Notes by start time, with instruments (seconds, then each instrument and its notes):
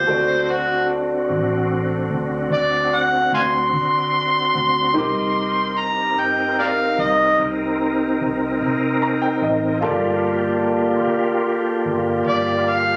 Already playing: harmonica C5
0.06 fingered electric bass D2, tonewheel organ D4 F#4, grand piano F#4 A4 C5 D5
0.11 tonewheel organ C4
0.50 harmonica F#4
1.30 fingered electric bass A1
2.11 fingered electric bass D2
2.50 fingered electric bass D2, harmonica D5
2.95 harmonica F#5
3.32 fingered electric bass D2, harmonica F5 G#5 C6
3.73 fingered electric bass D3
4.55 fingered electric bass D2
4.94 fingered electric bass C2, tonewheel organ C4 D#4 A#4, grand piano D#4 G4 A#4
4.98 grand piano D6
5.78 harmonica A#5
6.17 fingered electric bass G2, harmonica G5
6.59 harmonica A#4 D5 F5
6.98 fingered electric bass C2, harmonica D#5
7.39 fingered electric bass C2
8.21 fingered electric bass C2
8.61 fingered electric bass C3
9.02 grand piano A#5
9.22 grand piano G5
9.42 fingered electric bass A1, grand piano D#5
9.81 fingered electric bass G1, tonewheel organ A#3 F4 G4, grand piano F4 A4 A#4 D5
11.04 fingered electric bass D2
11.86 fingered electric bass G1
12.26 fingered electric bass G1, harmonica D5
12.69 harmonica F5